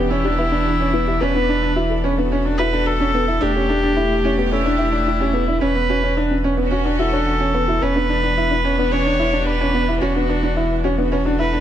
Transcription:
Already playing: E1 E3 B3 G4
0.00 D4 G4
0.10 C#4 E4
0.24 D4 G4
0.38 E4 B4
0.52 D4
0.66 D4
0.80 C#4
0.93 B3 E4
1.07 E4 G4
1.21 E1 C#4 B4
1.35 B3 D4
1.49 D4
1.62 D4
1.76 E4 F#4
1.90 A4
1.95 A4
2.04 C#4 B4
2.18 B3 D4 F#4
2.32 C#4 D4
2.45 D4
2.58 E4 F#4 B4
2.73 D4 A4
2.86 A4 B4
3.00 C#4 D4
3.14 B3 D4
3.28 E4
3.41 E1 A3 D4 E4 G4
3.55 C#4 G4
3.69 D4 A4
3.83 D4
3.96 D4 E4
4.09 G4
4.17 D4
4.25 C#4 E4
4.38 B3 G4
4.51 C#4 E4 A4
4.65 D4
4.78 D4 E4
4.92 D4
5.08 E4
5.20 C#4 G4
5.33 B3 A4
5.47 D4 E4
5.61 E1 E3 C#4 B4
5.75 B3
5.89 C#4 F#4
6.03 C#4 B4
6.12 B3
6.17 D4 C#5
6.31 C#4
6.44 C#4
6.57 B3 F#4
6.62 C#4
6.71 C#4 F#4
6.85 D4 B4
6.99 E4 F#4 A4
7.13 D4 C#5
7.27 F#5
7.40 C#4
7.54 B3 B4
7.68 E4 F#4
7.82 E1 C#4 B4
7.96 B3 D4
8.08 D4
8.23 D4
8.37 E4
8.51 D4
8.64 C#4 B4
8.78 B3 D4 G4
8.92 C#4 D4 C#5
9.06 D4
9.19 E4
9.33 D4
9.47 B4
9.61 C#4 D4
9.74 B3 D4
9.88 E4
10.01 E1 C#4 F#4
10.16 B3 D4
10.29 D4 B4
10.43 D4
10.56 D4 E4
10.84 C#4 F#4
10.98 B3 D4 F#4 A4
11.12 C#4 B4
11.25 D4
11.39 D4 E4 B4
11.53 D4

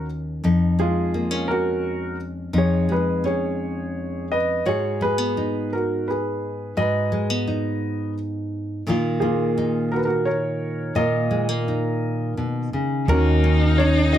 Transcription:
Already playing: D#2 D#3 C#4 F#4
0.44 F2 D#4
0.79 G#3 F4 G#4
1.14 A#3
1.31 C#4
1.48 F#4 A#4
2.53 F2 D#4
2.58 G#4 C#5
2.89 G#3 G#4 B4
3.24 C#4 G#4 C#5
4.32 B4 D#5
4.66 G#2 F#4 G#4 C#5
5.01 G#3 G#4 B4
5.18 B3
5.37 D#4
5.73 F#4 A#4
6.08 G#4 B4
6.77 G#2 F#4 B4 D#5
7.12 G#3
7.30 B3
7.47 D#4
8.87 A#2 D#3 A#3 D#4 F4
9.20 A#3 F4 G#4
9.58 D#4
9.92 F#4 A#4
9.97 B4
10.05 F#4 A#4
10.25 A#4 C#5
10.95 A#2 F4 A#4 D#5
11.31 G#3
11.49 A#3
11.68 D#4
12.37 B2
12.73 C#3
13.08 D#2 D#3 C#4 D#4 F#4 A#4
13.44 C#4
13.78 C#4 D#4 C#5
14.13 F#4 D#5

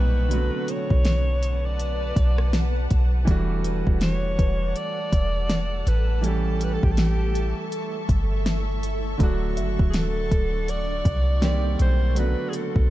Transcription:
Already playing: B1 A#2 G3 C4 D#4 G4 B4
0.29 D3 F#3 A3 B4 F#5 A5, closed hi-hat
0.33 B3 F#4
0.68 C#5, closed hi-hat
0.90 B1, kick
1.05 snare, closed hi-hat
1.43 closed hi-hat
1.66 D5
1.79 closed hi-hat
2.16 B1, kick, closed hi-hat
2.38 cross-stick
2.53 snare, closed hi-hat
2.91 B1, kick, closed hi-hat
3.25 E1 E3 G3 A3 A4 F#5 A5, kick, closed hi-hat
3.29 D4 F#4
3.64 closed hi-hat
3.87 E1, kick
4.01 C#5, snare, closed hi-hat
4.38 E1 B4, kick, closed hi-hat
4.76 D5, closed hi-hat
5.12 E1, kick, closed hi-hat
5.50 snare, closed hi-hat
5.87 A1 B4, closed hi-hat
6.21 E3 G3 A3 A4 E5 C#6, closed hi-hat
6.25 C#4 G4
6.61 B4, closed hi-hat
6.74 A4
6.83 A1 G4, kick
6.92 A4
6.97 G4, snare, closed hi-hat
7.35 closed hi-hat
7.72 closed hi-hat
8.09 G1, kick, closed hi-hat
8.46 snare, closed hi-hat
8.83 closed hi-hat
9.18 D1 D3 F#3 A3 D5 F#5, kick, closed hi-hat
9.22 D4 F#4
9.57 F#1 E5, closed hi-hat
9.79 D1, kick
9.90 G#4, closed hi-hat
9.94 A4, snare
10.31 D1, kick, closed hi-hat
10.68 D5, closed hi-hat
11.05 C2, kick, closed hi-hat
11.41 D#3 G3 A#3 C4 G4 D5, snare, closed hi-hat
11.79 B1 C5, closed hi-hat
12.14 C#3 F#3 A3 A4 D5 F#5 B5, closed hi-hat
12.18 D3 B3 F#4 B4
12.49 G#4, closed hi-hat
12.56 A4
12.76 B1, kick

